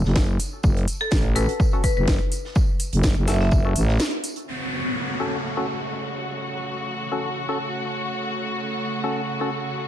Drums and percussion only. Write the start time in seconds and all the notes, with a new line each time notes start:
0.05 snare
0.16 kick, snare, tambourine
0.39 open hi-hat, tambourine
0.63 kick, tambourine
0.77 closed hi-hat
0.88 open hi-hat, tambourine
1.11 kick, snare, tambourine
1.36 open hi-hat, tambourine
1.49 closed hi-hat
1.60 kick, tambourine
1.84 kick, open hi-hat, tambourine
2.08 kick, snare, tambourine
2.32 open hi-hat, tambourine
2.45 snare
2.55 kick, tambourine
2.80 open hi-hat, tambourine
2.93 closed hi-hat
3.03 kick, snare, tambourine
3.27 snare, open hi-hat, tambourine
3.40 snare
3.51 kick, tambourine
3.75 open hi-hat, tambourine
3.88 snare
3.99 snare, tambourine
4.24 open hi-hat, tambourine
4.36 closed hi-hat
4.48 crash